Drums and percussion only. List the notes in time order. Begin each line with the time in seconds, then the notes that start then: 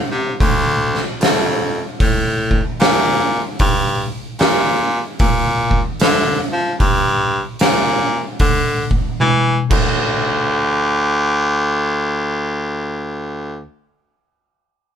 0.40 kick, open hi-hat
0.94 snare
1.21 snare, open hi-hat
2.00 kick, open hi-hat
2.51 kick
2.80 snare, open hi-hat
3.59 kick, open hi-hat
4.39 snare, open hi-hat
5.19 kick, open hi-hat
5.71 kick
6.00 snare, open hi-hat
6.80 kick, open hi-hat
7.59 snare, open hi-hat
8.39 kick, open hi-hat
8.91 kick
9.20 high tom
9.71 kick, crash